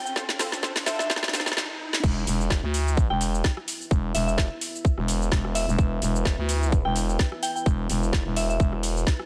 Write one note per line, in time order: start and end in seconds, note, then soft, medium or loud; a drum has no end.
0.00 1.57 F4 medium
0.00 1.57 C5 medium
0.00 1.57 A5 medium
0.00 riser medium
0.05 0.12 G5 medium
0.05 shaker soft
0.16 0.27 C4 medium
0.16 0.27 F4 medium
0.16 0.27 A4 medium
0.16 0.27 C5 loud
0.16 kick loud
0.16 snare medium
0.16 shaker soft
0.29 snare medium
0.39 0.50 C4 medium
0.39 0.50 F4 medium
0.39 0.50 A4 medium
0.39 0.50 C5 loud
0.39 snare loud
0.39 open hi-hat loud
0.39 shaker medium
0.52 snare medium
0.52 shaker soft
0.63 0.74 C4 medium
0.63 0.74 F4 medium
0.63 0.74 A4 medium
0.63 0.74 C5 loud
0.63 kick loud
0.63 snare medium
0.63 shaker soft
0.76 snare medium
0.76 open hi-hat medium
0.86 0.97 C4 medium
0.86 0.97 F4 medium
0.86 0.97 A4 medium
0.86 0.97 C5 loud
0.86 0.95 E5 medium
0.86 snare loud
0.86 open hi-hat loud
0.86 shaker medium
0.99 1.06 E5 medium
0.99 snare medium
0.99 shaker soft
1.10 1.21 C4 medium
1.10 1.21 F4 medium
1.10 1.21 A4 medium
1.10 1.21 C5 loud
1.10 kick loud
1.10 snare loud
1.10 shaker soft
1.16 snare loud
1.23 snare medium
1.28 snare medium
1.33 1.44 C4 loud
1.33 1.44 F4 medium
1.33 1.44 A4 medium
1.33 1.44 C5 loud
1.33 snare loud
1.33 open hi-hat loud
1.33 shaker medium
1.40 snare medium
1.46 snare medium
1.46 shaker soft
1.52 snare medium
1.57 snare loud
1.93 snare medium
2.03 2.25 E1 loud
2.03 9.26 E4 loud
2.03 kick loud
2.03 crash loud
2.03 shaker soft
2.27 2.61 E1 loud
2.27 open hi-hat loud
2.27 shaker medium
2.37 9.26 E5 medium
2.41 9.26 B4 loud
2.41 shaker soft
2.50 kick loud
2.50 snare loud
2.50 shaker soft
2.63 3.08 D2 loud
2.74 open hi-hat loud
2.74 shaker medium
2.88 shaker soft
2.97 kick loud
2.97 shaker soft
3.10 3.42 E1 loud
3.10 3.22 G5 medium
3.10 cross-stick medium
3.21 open hi-hat loud
3.21 shaker medium
3.35 shaker soft
3.44 kick loud
3.44 snare loud
3.44 shaker soft
3.57 cross-stick medium
3.68 open hi-hat loud
3.68 shaker medium
3.81 shaker soft
3.91 4.13 E1 loud
3.91 kick loud
3.91 shaker soft
4.14 4.49 E1 loud
4.14 4.23 E5 medium
4.14 open hi-hat loud
4.14 shaker medium
4.27 4.34 E5 medium
4.27 shaker soft
4.38 kick loud
4.38 snare loud
4.38 shaker soft
4.61 open hi-hat loud
4.61 shaker medium
4.75 shaker soft
4.85 kick loud
4.85 shaker soft
4.98 5.30 E1 loud
4.98 cross-stick medium
5.08 open hi-hat loud
5.08 shaker medium
5.22 shaker soft
5.32 5.66 E1 loud
5.32 kick loud
5.32 snare loud
5.32 shaker soft
5.45 cross-stick medium
5.55 6.02 E5 medium
5.55 open hi-hat loud
5.55 shaker medium
5.68 5.77 E1 loud
5.68 shaker soft
5.79 6.00 E1 loud
5.79 kick loud
5.79 shaker soft
6.02 6.36 E1 loud
6.02 open hi-hat loud
6.02 shaker medium
6.16 shaker soft
6.25 kick loud
6.25 snare loud
6.25 shaker soft
6.38 6.83 D2 loud
6.49 open hi-hat loud
6.49 shaker medium
6.62 shaker soft
6.72 kick loud
6.72 shaker soft
6.85 7.18 E1 loud
6.85 6.97 G5 medium
6.85 cross-stick medium
6.96 open hi-hat loud
6.96 shaker medium
7.09 shaker soft
7.19 kick loud
7.19 snare loud
7.19 shaker soft
7.32 cross-stick medium
7.43 7.51 G5 loud
7.43 open hi-hat loud
7.43 shaker medium
7.56 7.62 G5 medium
7.56 shaker soft
7.66 7.88 E1 loud
7.66 kick loud
7.66 shaker soft
7.90 8.24 E1 loud
7.90 open hi-hat loud
7.90 shaker medium
8.03 shaker soft
8.13 kick loud
8.13 snare loud
8.13 shaker soft
8.26 8.58 E1 loud
8.36 8.45 E5 medium
8.36 open hi-hat loud
8.36 shaker medium
8.49 8.56 E5 medium
8.49 shaker soft
8.60 9.05 E1 loud
8.60 kick loud
8.60 shaker soft
8.73 cross-stick medium
8.83 open hi-hat loud
8.83 shaker medium
8.97 shaker soft
9.07 kick loud
9.07 snare loud
9.07 shaker soft
9.20 cross-stick medium